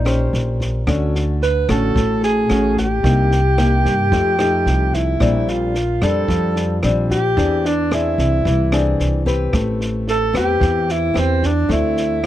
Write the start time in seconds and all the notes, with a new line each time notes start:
Already playing: A#1 A#2 D#4
0.05 C#4 G4 C5, cross-stick, snare
0.33 A#1, snare
0.60 kick, snare
0.87 D2 D3 A3 C#4 F#4, kick, cross-stick, snare
1.15 snare
1.42 B4, snare
1.69 A1 A3 C#4 F#4 A4, kick, cross-stick, snare
1.95 A1 A2, kick, snare
2.23 G#4, snare
2.50 A1 A3 C#4 F#4, cross-stick, snare
2.77 G4, kick, snare
3.03 C2 C3 A#3 D#4 G4, kick, snare
3.31 snare
3.58 A#3 D#4 G4, cross-stick, snare
3.85 G2, kick, snare
4.12 F2 F3 A3 D#4 G4, kick, snare
4.39 A3 D#4 G4, cross-stick, snare
4.66 C2, snare
4.93 E4, kick, snare
5.20 A#1 A#2 G3 C4 D4, kick, cross-stick, snare
5.48 F4, snare
5.74 snare
6.01 F2 G3 C4 D4 A4, kick, cross-stick, snare
6.28 F2 F3, kick, snare
6.56 snare
6.83 A#1 G3 C4 D4, cross-stick, snare
7.10 G4, kick, snare
7.37 E2 E3 C4 D4 G#4, kick, snare
7.65 D4, snare
7.91 C4 D4 E4 G#4, cross-stick, snare
8.18 C2, kick, snare
8.45 C2 E3, kick, snare
8.72 C4 D4 G#4, cross-stick, snare
8.99 C2, snare
9.26 C4 G4 B4, kick, snare
9.53 A1 A3, kick, cross-stick, snare
9.81 snare
10.07 A4, snare
10.33 E2 C4 G4 B4, kick, cross-stick, snare
10.60 E2 E3, kick, snare
10.89 E4, snare
11.14 E2 C4 G4 B4, cross-stick, snare
11.19 C4
11.43 D4, kick, snare
11.69 D2 D3 A3 C4 E4, kick, snare
11.97 snare